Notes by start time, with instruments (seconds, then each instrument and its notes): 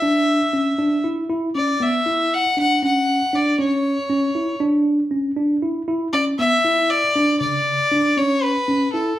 Already playing: violin E5
0.02 tine electric piano D4
0.53 tine electric piano C#4
0.79 tine electric piano D4
1.04 tine electric piano E4
1.30 tine electric piano E4
1.55 tine electric piano C#4, violin D5
1.80 tine electric piano B3, violin E5
2.06 tine electric piano E4
2.34 violin F#5
2.57 tine electric piano D4, violin F#5
2.83 tine electric piano C#4, violin F#5
3.33 tine electric piano D4, violin D5
3.59 tine electric piano C#4, violin C#5
4.09 tine electric piano C#4
4.35 tine electric piano E4
4.60 tine electric piano D4
5.11 tine electric piano C#4
5.37 tine electric piano D4
5.62 tine electric piano E4
5.88 tine electric piano E4
6.13 tine electric piano C#4, violin D5
6.39 tine electric piano B3, violin E5
6.64 tine electric piano E4
6.90 violin D5
7.15 tine electric piano D4
7.40 tine electric piano C#3, violin D5
7.92 tine electric piano D4
8.17 tine electric piano C#4, violin C#5
8.43 violin B4
8.68 tine electric piano C#4
8.93 tine electric piano E4, violin A4